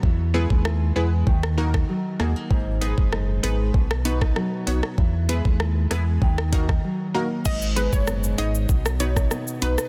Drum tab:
CC |----------------|----------------|----------------|x---------------|
HH |----------------|--x---x---x---x-|--x---x---x-----|--x---x---x---x-|
SH |----------------|----------------|----------------|xxxxxxxxxxxxxxxx|
SD |----r----r-r--r-|----r----r-rr--r|----r-r--r-r----|----r----r-rr--r|
BD |o--o----o--o----|o--o----o--o----|o--o----o-oo----|o--o----o--o----|